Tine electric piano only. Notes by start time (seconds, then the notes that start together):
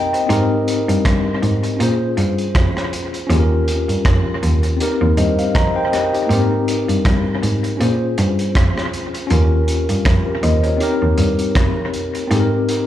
Already playing: C4 D#4 G4 A#4 D#5 G5 A#5
0.14 C5 D#5
0.27 C4 D#4 G4
0.33 A#4
1.77 C#4 F4
1.81 G#4 C5
3.27 C#4 F4 G4
3.33 G#4
3.40 A#4
4.77 C4 D#4
4.81 G4 A#4
5.17 C5 D#5
5.39 F5
5.55 C5 D#5 A#5
5.76 C5 G5
5.92 G4 A#4 D#5
6.13 D#4 G4
6.27 A#3 D#4 G4
6.33 C4 A#4
7.77 C#4 F4 G#4
7.83 C5
9.27 C#4 F4 G4
9.33 A#4
10.27 G4 A#4
10.43 C5 D#5
10.64 A#4 C#5
10.77 C4 D#4
10.81 G4 A#4
12.27 C4 D#4
12.32 G4 A4
12.40 A#4